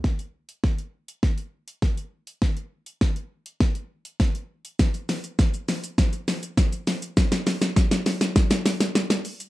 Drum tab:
HH |-x-x-x-x-x-x-x-x|-x-x-x-x-x-x-x-x|-xox-xox-xox-xox|-xox-xox-xox-xox|
SH |----------------|----------------|xxxxxxxxxxxxxxxx|xxxxxxxxxxxxxxxx|
SD |o---o---o---o---|o---o---o---o---|o-o-o-o-o-o-o-o-|oooooooooooooo--|
BD |o---o---o---o---|o---o---o---o---|o---o---o---o---|o---o---o-------|